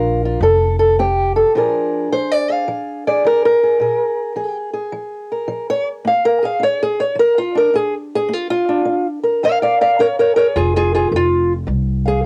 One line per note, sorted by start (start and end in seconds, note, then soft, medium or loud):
0.00 0.34 A#1 medium
0.00 0.37 F3 medium
0.00 0.40 D4 medium
0.00 0.23 F4 medium
0.00 0.39 A#4 soft
0.25 0.40 F4 medium
0.41 1.41 F1 medium
0.41 0.94 F3 medium
0.41 0.78 A4 medium
0.79 0.98 A4 medium
0.99 1.51 C4 medium
0.99 1.36 G4 medium
1.36 1.52 A4 medium
1.55 2.07 A#2 medium
1.55 2.12 F3 soft
1.55 3.84 D4 medium
1.55 2.49 G#4 soft
1.55 2.12 A#4 medium
2.12 2.64 F3 medium
2.12 2.31 C5 medium
2.31 2.52 D5 loud
2.49 3.07 G#4 soft
2.49 3.06 F5 medium
2.68 3.20 F3 medium
3.07 3.63 G#4 soft
3.07 3.24 D5 medium
3.24 3.76 F3 medium
3.24 3.43 A#4 loud
3.45 4.56 A#4 loud
3.63 3.81 G#4 soft
3.80 4.32 A#2 medium
3.80 4.36 G#4 soft
4.36 4.88 F3 medium
4.36 4.73 G#4 soft
4.73 6.08 G#4 soft
4.92 5.45 F3 medium
5.32 5.69 A#4 soft
5.48 6.01 F3 medium
5.70 5.87 C#5 loud
6.05 6.57 A#3 medium
6.05 6.25 F5 medium
6.25 6.43 A#4 loud
6.43 6.82 G#4 medium
6.43 6.63 F5 medium
6.60 7.13 D4 medium
6.60 6.81 C#5 medium
6.83 7.00 G#4 medium
7.00 7.18 C#5 medium
7.15 7.69 F3 medium
7.15 7.37 A#4 loud
7.38 7.56 F4 medium
7.55 7.73 D4 soft
7.55 7.75 A#4 medium
7.74 8.27 D4 medium
7.74 7.94 G#4 loud
8.15 8.33 G#4 loud
8.29 8.82 A#3 medium
8.33 8.49 F4 medium
8.50 9.06 F4 loud
8.69 8.84 D4 soft
8.85 9.39 D4 medium
9.24 9.99 A#4 soft
9.43 9.96 F3 medium
9.43 9.50 D5 medium
9.43 9.62 F5 loud
9.62 9.74 D5 medium
9.62 9.80 F5 medium
9.81 9.90 D5 medium
9.81 10.00 F5 medium
9.99 10.52 D4 medium
9.99 10.06 A#4 medium
9.99 10.19 C#5 loud
10.19 10.31 A#4 medium
10.19 10.36 C#5 medium
10.36 10.54 G#4 soft
10.36 10.46 A#4 medium
10.36 10.56 C#5 loud
10.56 11.06 F1 medium
10.56 10.75 F4 medium
10.56 10.75 G#4 medium
10.76 10.93 F4 medium
10.76 10.94 G#4 loud
10.95 11.13 F4 medium
10.95 11.11 G#4 medium
11.12 11.62 F1 medium
11.12 11.65 A4 medium
11.16 11.52 F4 loud
11.67 12.26 C2 medium
11.67 12.21 C3 medium
12.05 12.24 G#4 medium
12.05 12.26 F5 soft